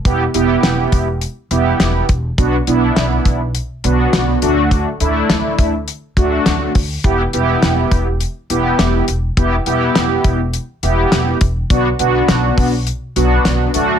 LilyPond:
<<
  \new Staff \with { instrumentName = "Analog polysynth" } { \time 4/4 \key e \dorian \tempo 4 = 103 <b e' g'>8 <b e' g'>4~ <b e' g'>16 r8. <b e' g'>4 r8 | <b d' fis'>8 <b d' e'>4~ <b d' e'>16 r8. <b d' fis'>4 <a d' fis'>8~ | <a d' fis'>8 <a d' e'>4~ <a d' e'>16 r8. <a d' fis'>4 r8 | <b e' g'>8 <b e' g'>4~ <b e' g'>16 r8. <b e' g'>4 r8 |
<b e' g'>8 <b e' g'>4~ <b e' g'>16 r8. <b e' g'>4 r8 | <b d' fis'>8 <b d' fis'>4~ <b d' fis'>16 r8. <b d' fis'>4 <a d' fis'>8 | }
  \new Staff \with { instrumentName = "Upright bass" } { \clef bass \time 4/4 \key e \dorian e,,8 e,,8 e,,8 e,,8. r16 e,,8 e,,8 e,,8 | b,,8 b,,8 b,,8 b,,8. r16 b,,8 b,,8 d,8~ | d,8 d,8 d,8 d,8. r16 d,8 d,8 d,8 | e,,8 e,,8 e,,8 e,,8. r16 e,,8 e,,8 e,,8 |
e,,8 e,,8 e,,8 e,,8. r16 e,,8 e,,8 e,,8 | b,,8 b,,8 b,,8 b,,8. r16 b,,8 b,,8 d,8 | }
  \new DrumStaff \with { instrumentName = "Drums" } \drummode { \time 4/4 <hh bd>8 hh8 <hh sn>8 <hh bd>8 hh8 hh8 <hh sn>8 <hh bd>8 | <hh bd>8 hh8 <hh sn>8 <hh bd>8 hh8 hh8 <hh sn>8 hh8 | <hh bd>8 hh8 <hh sn>8 <hh bd>8 hh8 <hh bd>8 <hh sn>8 <hho bd>8 | <hh bd>8 hh8 <hh sn>8 <hh bd>8 hh8 hh8 <hh sn>8 hh8 |
<hh bd>8 hh8 <hh sn>8 <hh bd>8 hh8 hh8 <hh sn>8 <hh bd>8 | <hh bd>8 hh8 <hh sn>8 <hho bd>8 hh8 hh8 <hh sn>8 hh8 | }
>>